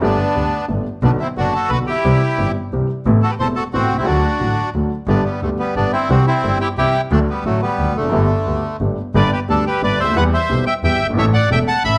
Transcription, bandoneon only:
0.03 0.66 B3 medium
0.03 0.66 D4 medium
1.03 1.11 B3 medium
1.03 1.11 D4 medium
1.20 1.29 C4 medium
1.20 1.28 E4 medium
1.37 1.54 D4 medium
1.37 1.54 F#4 medium
1.53 1.70 F#4 medium
1.53 1.71 A4 medium
1.70 1.79 F#4 medium
1.70 1.77 B4 medium
1.87 2.52 E4 medium
1.87 2.51 G4 medium
3.22 3.31 F#4 medium
3.22 3.31 A4 medium
3.30 3.35 G4 medium
3.30 3.34 B4 medium
3.40 3.48 A4 medium
3.40 3.47 C5 medium
3.56 3.64 F#4 medium
3.56 3.63 A4 medium
3.73 3.97 C4 medium
3.73 3.97 F#4 medium
3.97 4.06 C4 medium
3.97 4.05 E4 medium
4.05 4.70 D4 medium
4.05 4.69 F#4 medium
5.08 5.22 B3 medium
5.08 5.24 D4 medium
5.24 5.41 G3 medium
5.24 5.40 B3 medium
5.42 5.50 D3 medium
5.42 5.49 A3 medium
5.59 5.75 G3 medium
5.59 5.75 B3 medium
5.76 5.92 B3 medium
5.76 5.92 D4 medium
5.92 6.09 C4 medium
5.92 6.10 E4 medium
6.09 6.26 C4 medium
6.09 6.25 F#4 medium
6.27 6.59 C4 medium
6.27 6.58 E4 medium
6.61 6.68 E4 medium
6.61 6.68 G4 loud
6.78 7.01 E4 medium
6.78 7.01 G4 loud
7.12 7.20 A3 medium
7.12 7.19 D4 medium
7.29 7.45 G3 medium
7.29 7.44 B3 medium
7.45 7.61 F#3 medium
7.45 7.61 A3 medium
7.62 7.94 G3 medium
7.62 7.96 B3 medium
7.96 8.77 D3 medium
7.96 8.77 A3 medium
9.15 9.31 B4 medium
9.15 9.31 D5 medium
9.32 9.40 G4 medium
9.32 9.40 B4 medium
9.49 9.65 D4 medium
9.49 9.65 A4 medium
9.66 9.82 G4 medium
9.66 9.82 B4 medium
9.83 9.99 B4 medium
9.83 10.00 D5 medium
10.00 10.15 C5 medium
10.00 10.17 E5 medium
10.16 10.24 B4 medium
10.16 10.24 F#5 medium
10.34 10.65 C5 medium
10.34 10.65 E5 medium
10.66 10.74 E5 medium
10.66 10.74 G5 medium
10.84 11.07 E5 medium
10.84 11.07 G5 loud
11.18 11.26 C#5 medium
11.18 11.25 E5 loud
11.33 11.50 D5 medium
11.33 11.49 F#5 medium
11.52 11.59 E5 medium
11.52 11.59 G5 loud
11.68 11.83 F#5 medium
11.68 11.83 A5 loud
11.84 11.98 E5 medium
11.84 11.98 B5 loud

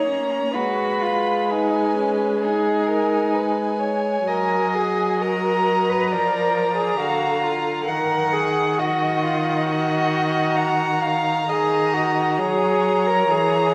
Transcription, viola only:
0.00 0.57 A#3 soft
0.55 4.27 G#3 soft
4.28 6.15 F#3 soft
6.13 7.00 F3 soft
7.00 7.89 D3 soft
7.88 11.47 D#3 soft
11.48 12.40 D#3 soft
12.38 13.30 F#3 medium
13.31 13.74 E3 medium

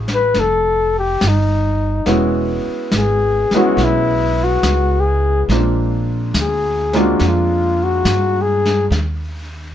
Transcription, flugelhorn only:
0.14 0.41 B4 medium
0.39 0.97 A4 medium
0.99 1.29 G4 medium
1.28 2.10 D#4 medium
2.98 3.57 G#4 medium
3.55 3.86 F#4 medium
3.84 4.45 E4 medium
4.44 5.01 F#4 medium
5.00 5.44 G#4 medium
6.41 7.00 G#4 medium
6.99 7.29 F#4 medium
7.28 7.85 F4 medium
7.83 8.43 F#4 medium
8.42 8.86 G#4 medium

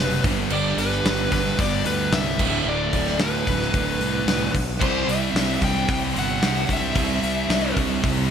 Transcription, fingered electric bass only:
0.00 0.20 F#1 medium
0.24 0.47 G1 medium
0.51 0.74 G1 loud
0.77 1.00 G1 medium
1.05 1.27 G1 medium
1.32 1.54 G1 medium
1.59 1.81 G1 medium
1.85 2.08 D2 medium
2.12 2.35 C2 medium
2.39 2.61 D1 medium
2.66 2.88 D1 loud
2.93 3.16 D1 medium
3.19 3.42 D2 medium
3.47 3.69 D1 medium
3.74 3.96 D1 medium
4.00 4.23 C2 medium
4.26 4.49 C2 medium
4.55 4.77 B1 medium
4.81 5.04 C2 loud
5.08 5.31 C2 medium
5.34 5.57 C2 medium
5.61 5.84 C2 medium
5.89 6.11 C2 medium
6.16 6.38 G1 medium
6.42 6.65 C2 medium
6.69 6.92 C2 medium
6.96 7.18 C2 loud
7.23 7.46 C2 medium
7.49 7.72 C2 medium
7.77 7.99 C2 medium
8.04 8.26 C2 loud

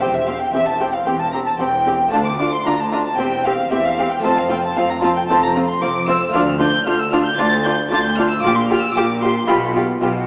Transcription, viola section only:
0.01 0.09 C4 medium
0.27 0.35 C4 medium
0.53 0.61 C4 medium
0.80 0.88 C4 medium
1.06 1.14 C4 medium
1.33 1.41 C4 medium
1.59 1.67 C4 medium
1.86 1.94 C4 medium
2.11 2.19 D4 medium
2.39 2.47 D4 medium
2.65 2.73 D4 medium
2.92 3.00 D4 medium
3.18 3.26 C4 medium
3.45 3.53 C4 medium
3.71 3.79 C4 medium
3.98 4.06 C4 medium
4.24 4.32 C4 medium
4.51 4.59 C4 medium
4.77 4.85 C4 medium
5.03 5.11 C4 medium
5.29 5.37 C4 medium
5.55 5.63 C4 medium
5.82 5.90 C4 medium
6.08 6.16 C4 medium
6.34 6.42 D4 medium
6.60 6.68 D4 medium
6.86 6.94 D4 medium
7.12 7.20 D4 medium
7.38 7.46 D4 medium
7.64 7.72 D4 medium
7.91 7.99 D4 medium
8.18 8.26 D4 medium
8.44 8.52 F4 medium
8.70 8.78 F4 medium
8.97 9.05 F4 medium
9.22 9.30 F4 medium
9.48 9.56 F4 medium
9.75 9.83 F4 medium
10.01 10.09 F4 medium

